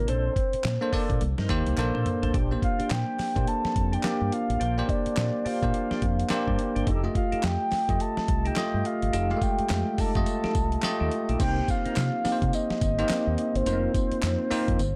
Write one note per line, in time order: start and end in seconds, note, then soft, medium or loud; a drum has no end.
0.00 0.11 A#4 medium
0.07 0.28 A#1 loud
0.07 0.34 D4 medium
0.07 0.34 A4 medium
0.07 0.34 C5 medium
0.07 0.93 C5 medium
0.07 closed hi-hat medium
0.36 kick medium
0.36 closed hi-hat medium
0.53 muted fingered electric bass stroke soft
0.53 closed hi-hat medium
0.64 0.77 A#2 loud
0.64 snare loud
0.64 clap medium
0.64 closed hi-hat medium
0.81 0.89 A#3 medium
0.81 0.90 D4 medium
0.81 0.90 A4 medium
0.81 0.90 C5 loud
0.92 1.21 A#3 medium
0.92 1.12 D4 medium
0.92 1.21 D4 medium
0.92 1.12 A4 medium
0.92 1.21 A4 medium
0.92 1.12 C5 medium
0.92 1.21 D5 loud
0.92 muted fingered electric bass stroke medium
0.92 kick medium
0.92 open hi-hat medium
1.10 1.18 A#2 medium
1.10 kick medium
1.10 closed hi-hat medium
1.21 1.34 C2 loud
1.21 closed hi-hat medium
1.38 1.46 G2 medium
1.38 1.53 D#4 medium
1.38 1.53 A#4 medium
1.38 1.53 C5 medium
1.38 snare medium
1.49 1.62 D#2 medium
1.49 1.77 A#3 loud
1.49 1.78 D#4 medium
1.49 1.78 G4 medium
1.49 1.78 C5 loud
1.49 kick medium
1.49 closed hi-hat medium
1.66 1.74 C2 medium
1.66 closed hi-hat medium
1.77 1.90 A#1 loud
1.77 2.25 A#3 medium
1.77 2.26 D4 medium
1.77 2.26 A4 medium
1.77 2.26 C5 loud
1.77 clap loud
1.77 closed hi-hat medium
1.77 high tom medium
1.94 2.03 A#2 loud
1.94 2.09 D4 medium
1.94 2.09 A4 medium
1.94 2.10 C5 medium
1.94 mid tom medium
2.06 closed hi-hat medium
2.06 mid tom medium
2.22 2.31 A1 medium
2.22 2.32 D4 medium
2.22 2.38 A4 medium
2.22 2.33 C5 medium
2.22 closed hi-hat soft
2.22 floor tom medium
2.34 2.55 A#1 loud
2.34 2.53 D4 medium
2.34 2.54 G4 medium
2.34 2.54 C5 loud
2.34 kick loud
2.34 closed hi-hat medium
2.51 3.12 A#3 medium
2.51 3.12 D4 medium
2.51 3.13 G4 medium
2.51 3.13 C5 medium
2.62 2.93 F5 medium
2.62 kick medium
2.62 closed hi-hat medium
2.79 2.94 D4 medium
2.79 2.94 G4 medium
2.79 2.94 C5 medium
2.79 muted fingered electric bass stroke soft
2.79 closed hi-hat medium
2.91 3.03 A#2 loud
2.91 3.49 G5 loud
2.91 snare loud
2.91 clap medium
2.91 closed hi-hat medium
3.19 muted fingered electric bass stroke soft
3.19 snare medium
3.19 clap medium
3.19 open hi-hat medium
3.35 3.44 A#2 loud
3.35 3.85 A#3 medium
3.35 3.85 D4 medium
3.35 3.85 G4 medium
3.35 3.85 C5 medium
3.35 kick loud
3.35 closed hi-hat medium
3.48 3.95 A5 loud
3.48 closed hi-hat medium
3.65 muted fingered electric bass stroke soft
3.65 snare medium
3.76 3.96 F2 medium
3.76 kick loud
3.76 closed hi-hat medium
3.92 4.07 D4 medium
3.92 4.08 G4 medium
3.92 4.08 C5 medium
3.92 4.35 G5 loud
3.92 closed hi-hat medium
4.03 4.57 A#3 medium
4.03 4.57 D4 medium
4.03 4.57 G4 medium
4.03 4.57 D5 medium
4.03 muted fingered electric bass stroke soft
4.03 snare loud
4.03 clap medium
4.03 closed hi-hat medium
4.21 4.29 G2 medium
4.32 4.91 F5 loud
4.32 closed hi-hat medium
4.50 4.58 A1 medium
4.50 closed hi-hat medium
4.60 4.81 A#1 loud
4.60 4.87 D4 medium
4.60 4.87 G4 medium
4.60 4.87 C5 loud
4.60 closed hi-hat medium
4.77 5.39 A#3 medium
4.77 5.39 D4 medium
4.77 5.39 G4 medium
4.77 5.39 C5 medium
4.89 5.48 D5 medium
4.89 kick medium
4.89 closed hi-hat medium
5.06 muted fingered electric bass stroke soft
5.06 closed hi-hat medium
5.17 5.30 A#2 loud
5.17 snare loud
5.17 clap medium
5.17 clap loud
5.17 closed hi-hat medium
5.45 5.65 D4 medium
5.45 5.65 G4 medium
5.45 5.65 C5 medium
5.45 6.59 F5 loud
5.45 muted fingered electric bass stroke medium
5.45 open hi-hat medium
5.62 5.71 A#2 medium
5.62 6.11 A#3 medium
5.62 6.12 D4 medium
5.62 6.12 G4 medium
5.62 6.12 C5 medium
5.62 kick medium
5.62 closed hi-hat medium
5.74 closed hi-hat medium
5.90 6.06 D4 medium
5.90 6.06 G4 medium
5.90 6.06 C5 medium
5.90 muted fingered electric bass stroke soft
5.90 snare medium
6.02 6.23 F2 medium
6.02 kick loud
6.02 closed hi-hat medium
6.20 closed hi-hat medium
6.30 6.83 A#3 loud
6.30 6.83 D4 medium
6.30 6.83 G4 loud
6.30 6.84 C5 loud
6.30 muted fingered electric bass stroke soft
6.30 snare loud
6.30 clap medium
6.30 closed hi-hat medium
6.47 6.56 G2 medium
6.47 6.62 D4 medium
6.47 6.62 G4 medium
6.47 6.62 C5 medium
6.47 kick medium
6.59 closed hi-hat medium
6.75 6.84 G1 medium
6.75 6.90 D4 medium
6.75 6.86 G4 medium
6.75 6.91 C5 medium
6.75 closed hi-hat medium
6.86 7.07 F1 loud
6.86 7.06 D#4 medium
6.86 7.06 G4 medium
6.86 7.07 A4 loud
6.86 kick loud
6.86 closed hi-hat medium
7.04 7.65 A3 medium
7.04 7.65 F4 medium
7.04 7.65 G4 medium
7.04 7.65 D#5 medium
7.15 7.46 F5 medium
7.15 kick medium
7.15 closed hi-hat medium
7.32 7.47 D#4 medium
7.32 7.47 G4 medium
7.32 7.47 A4 medium
7.32 muted fingered electric bass stroke soft
7.32 closed hi-hat medium
7.43 7.56 F2 loud
7.43 8.03 G5 loud
7.43 snare loud
7.43 clap medium
7.43 closed hi-hat medium
7.72 muted fingered electric bass stroke soft
7.72 snare medium
7.72 clap medium
7.72 open hi-hat medium
7.89 7.97 F2 loud
7.89 8.38 A3 medium
7.89 8.38 F4 medium
7.89 8.38 G4 medium
7.89 8.38 D#5 medium
7.89 kick medium
7.89 closed hi-hat medium
8.00 8.48 A5 loud
8.00 closed hi-hat medium
8.17 muted fingered electric bass stroke medium
8.17 snare medium
8.28 8.49 C2 loud
8.28 kick loud
8.28 closed hi-hat medium
8.45 8.60 D#4 medium
8.45 8.60 G4 medium
8.45 8.60 A4 medium
8.45 8.87 G5 loud
8.45 closed hi-hat medium
8.56 9.09 A3 medium
8.56 9.10 F4 medium
8.56 9.10 G4 medium
8.56 9.10 D#5 loud
8.56 snare loud
8.56 clap medium
8.56 closed hi-hat medium
8.74 8.82 G2 loud
8.85 9.44 F5 loud
8.85 closed hi-hat medium
9.02 9.10 G1 medium
9.02 closed hi-hat soft
9.13 9.34 F1 loud
9.13 9.40 D#4 medium
9.13 9.40 G4 medium
9.13 9.40 A4 loud
9.13 closed hi-hat medium
9.13 tambourine medium
9.30 9.36 G#3 medium
9.30 9.92 F4 medium
9.30 9.92 G4 medium
9.30 9.92 F5 medium
9.37 9.95 A3 medium
9.42 10.02 G5 loud
9.42 kick medium
9.42 closed hi-hat medium
9.42 tambourine medium
9.59 muted fingered electric bass stroke soft
9.59 closed hi-hat medium
9.70 9.83 F2 loud
9.70 snare loud
9.70 clap medium
9.70 clap loud
9.70 closed hi-hat medium
9.70 tambourine medium
9.98 10.18 D#4 medium
9.98 10.18 G4 medium
9.98 10.18 A4 medium
9.98 11.12 A5 loud
9.98 muted fingered electric bass stroke medium
9.98 kick medium
9.98 open hi-hat medium
9.98 tambourine medium
10.15 10.24 F2 medium
10.15 10.64 A3 medium
10.15 10.64 F4 medium
10.15 10.65 G4 medium
10.15 10.65 D#5 medium
10.15 kick loud
10.15 closed hi-hat medium
10.26 closed hi-hat medium
10.26 tambourine medium
10.43 10.58 D#4 medium
10.43 10.59 G4 medium
10.43 10.59 A4 medium
10.43 muted fingered electric bass stroke medium
10.43 snare medium
10.55 10.76 C2 medium
10.55 kick loud
10.55 closed hi-hat medium
10.55 tambourine medium
10.72 closed hi-hat medium
10.83 11.36 A3 loud
10.83 11.36 F4 loud
10.83 11.36 G4 loud
10.83 11.37 D#5 loud
10.83 snare loud
10.83 clap loud
10.83 clap medium
10.83 closed hi-hat medium
10.83 tambourine medium
11.00 11.09 D#2 medium
11.00 11.15 D#4 medium
11.00 11.15 G4 medium
11.00 11.15 A4 medium
11.11 closed hi-hat medium
11.28 11.37 A#1 medium
11.28 11.38 D#4 medium
11.28 11.44 G4 medium
11.28 11.44 A4 medium
11.28 closed hi-hat medium
11.39 11.60 C2 loud
11.39 12.03 A#3 medium
11.39 11.59 C4 medium
11.39 12.03 C4 medium
11.39 11.59 D#4 medium
11.39 12.03 D#4 medium
11.39 12.04 G4 medium
11.39 11.59 A#4 loud
11.39 12.04 C5 medium
11.39 11.72 G5 loud
11.39 kick loud
11.39 closed hi-hat medium
11.39 crash loud
11.39 tambourine medium
11.68 12.56 F5 loud
11.68 kick medium
11.68 closed hi-hat medium
11.68 tambourine medium
11.85 12.00 C4 medium
11.85 12.00 D#4 medium
11.85 12.00 A#4 medium
11.85 muted fingered electric bass stroke soft
11.85 closed hi-hat medium
11.96 12.09 C3 loud
11.96 snare loud
11.96 clap medium
11.96 closed hi-hat medium
11.96 tambourine medium
12.24 12.77 A#3 medium
12.24 12.78 C4 medium
12.24 12.78 D#4 medium
12.24 12.78 G4 medium
12.24 12.33 A#4 medium
12.24 muted fingered electric bass stroke medium
12.24 snare medium
12.24 open hi-hat medium
12.24 tambourine medium
12.32 12.81 C5 medium
12.42 12.50 C3 medium
12.42 kick loud
12.42 closed hi-hat medium
12.53 13.58 D#5 loud
12.53 closed hi-hat medium
12.53 tambourine medium
12.70 muted fingered electric bass stroke soft
12.70 snare medium
12.81 13.02 G1 loud
12.81 kick loud
12.81 closed hi-hat medium
12.81 tambourine medium
12.98 13.47 A#3 medium
12.98 13.13 C4 medium
12.98 13.47 C4 medium
12.98 13.13 D#4 medium
12.98 13.48 D#4 medium
12.98 13.48 G4 medium
12.98 13.14 A#4 medium
12.98 13.48 C5 medium
12.98 closed hi-hat medium
13.09 muted fingered electric bass stroke medium
13.09 snare loud
13.09 clap medium
13.09 closed hi-hat medium
13.09 tambourine medium
13.27 13.35 D#2 medium
13.38 closed hi-hat medium
13.55 13.63 G1 medium
13.55 14.96 C5 loud
13.55 closed hi-hat medium
13.66 13.87 F1 loud
13.66 13.74 A3 medium
13.66 14.30 C4 medium
13.66 13.93 D#4 medium
13.66 14.30 D#4 medium
13.66 13.93 F4 medium
13.66 14.30 F4 medium
13.66 13.93 A#4 loud
13.66 14.30 C5 medium
13.66 closed hi-hat medium
13.66 tambourine medium
13.72 14.33 A#3 medium
13.94 kick medium
13.94 closed hi-hat medium
13.94 tambourine medium
14.12 muted fingered electric bass stroke soft
14.12 closed hi-hat medium
14.23 14.35 F2 loud
14.23 snare loud
14.23 clap loud
14.23 closed hi-hat medium
14.23 tambourine medium
14.50 14.79 A#3 medium
14.50 14.79 C4 medium
14.50 14.70 D#4 medium
14.50 14.79 D#4 medium
14.50 14.71 F4 medium
14.50 14.80 F4 medium
14.50 14.71 A#4 medium
14.50 14.80 C5 loud
14.50 muted fingered electric bass stroke medium
14.50 open hi-hat medium
14.50 tambourine medium
14.68 14.76 F2 loud
14.68 kick medium
14.68 closed hi-hat medium
14.79 14.92 G1 loud
14.79 closed hi-hat medium
14.79 tambourine medium